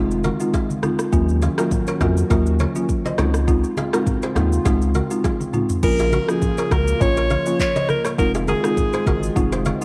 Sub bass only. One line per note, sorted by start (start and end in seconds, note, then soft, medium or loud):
0.00 0.31 F1 loud
1.13 1.48 D#2 loud
2.01 2.24 F2 medium
2.30 2.66 D#2 loud
3.19 3.65 C#2 loud
4.36 4.59 D#2 medium
4.66 5.01 C#2 loud
5.83 6.19 A#1 loud
6.71 6.94 C#2 medium
7.01 7.37 A#1 loud
8.18 8.54 F1 loud
9.07 9.30 G#1 medium
9.36 9.72 F1 loud